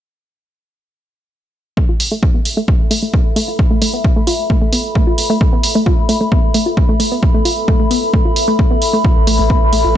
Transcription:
1.77 synth arpeggio sound A3, ambient pad A4, kick
1.89 synth arpeggio sound F4
2.00 open hi-hat
2.12 synth arpeggio sound A3
2.20 synth arpeggio sound A3, ambient pad E5, kick
2.34 synth arpeggio sound B3, ambient pad B5
2.45 open hi-hat
2.57 synth arpeggio sound A3
2.68 synth arpeggio sound F4, kick
2.91 synth arpeggio sound A3, open hi-hat
3.03 synth arpeggio sound A3
3.13 synth arpeggio sound B3, kick
3.36 synth arpeggio sound A3, open hi-hat
3.48 synth arpeggio sound F4
3.59 kick
3.71 synth arpeggio sound A3
3.82 synth arpeggio sound A3, open hi-hat
3.94 synth arpeggio sound B3
4.04 kick
4.16 synth arpeggio sound A3
4.27 synth arpeggio sound F4, open hi-hat
4.50 synth arpeggio sound A3, kick
4.62 synth arpeggio sound A3
4.73 synth arpeggio sound B3, open hi-hat
4.95 synth arpeggio sound A3, kick
5.07 synth arpeggio sound F4
5.18 open hi-hat
5.30 synth arpeggio sound A3
5.41 synth arpeggio sound A3, kick
5.53 synth arpeggio sound B3
5.63 open hi-hat
5.75 synth arpeggio sound A3
5.86 synth arpeggio sound F4, kick
6.09 synth arpeggio sound A3, open hi-hat
6.21 synth arpeggio sound A3
6.32 synth arpeggio sound B3, kick
6.54 synth arpeggio sound A3, open hi-hat
6.66 synth arpeggio sound F4
6.77 kick
6.89 synth arpeggio sound A3
7.00 synth arpeggio sound A3, open hi-hat
7.12 synth arpeggio sound B3
7.23 kick
7.34 synth arpeggio sound A3
7.45 synth arpeggio sound F4, open hi-hat
7.68 synth arpeggio sound A3, kick
7.80 synth arpeggio sound A3
7.91 synth arpeggio sound B3, open hi-hat
8.13 synth arpeggio sound A3, kick
8.25 synth arpeggio sound F4
8.36 open hi-hat
8.48 synth arpeggio sound A3
8.59 synth arpeggio sound A3, kick
8.71 synth arpeggio sound B3
8.82 open hi-hat
8.93 synth arpeggio sound A3
9.04 synth arpeggio sound F4, kick
9.16 sub bass A1
9.27 sub bass A1, synth arpeggio sound A3, open hi-hat
9.39 sub bass A1, synth arpeggio sound A3
9.50 synth arpeggio sound B3, kick
9.62 sub bass A1
9.73 sub bass A1, synth arpeggio sound A3, open hi-hat
9.84 sub bass A1, synth arpeggio sound F4

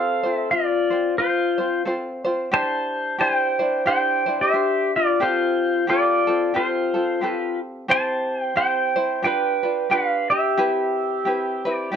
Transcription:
Already playing: ukulele C4 F4 A4 C5, pedal steel guitar A4 F5
0.23 ukulele C4 F4 C5
0.33 pedal steel guitar E5
0.51 pedal steel guitar F4 D5
0.90 ukulele C4 F4 C5
1.18 pedal steel guitar F4 C5
1.58 ukulele C4 F4 C5
1.85 ukulele C4 F4 A4 C5
2.25 ukulele C4 F4 C5
2.52 ukulele D4 E4 G4 C5, pedal steel guitar C5 A5
3.19 ukulele D4 E4 G4 C5, pedal steel guitar C5 G5
3.59 ukulele D4 E4 C5
3.86 ukulele D4 E4 G4 C5, pedal steel guitar C5 G5
4.26 ukulele D4 E4 C5
4.41 pedal steel guitar G4 E5
4.53 ukulele D4 G4 C5
4.96 pedal steel guitar F4 D5
5.20 ukulele C4 F4 G4 A4, pedal steel guitar F4 C5
5.87 ukulele C4 F4 G4 A4, pedal steel guitar F4 D5
6.27 ukulele C4 F4 A4
6.54 ukulele C4 F4 G4 A4, pedal steel guitar F4 C5
6.94 ukulele C4 F4 A4
7.21 ukulele C4 F4 G4 A4, pedal steel guitar B4
7.88 ukulele C4 E4 G4 C5, pedal steel guitar C5 A5
8.42 pedal steel guitar G5
8.56 ukulele C4 E4 G4 C5, pedal steel guitar C5 G5
8.96 ukulele C4 E4 C5
9.22 ukulele D4 F4 G4 B4, pedal steel guitar B4 G5
9.63 ukulele D4 F4 B4
9.90 ukulele D4 F4 G4 B4, pedal steel guitar B4 F5
10.30 pedal steel guitar G4 E5
10.57 ukulele C4 E4 G4 B4
11.25 ukulele C4 E4 G4 B4
11.65 ukulele C4 E4 B4
11.76 pedal steel guitar D5
11.92 ukulele C4 G4

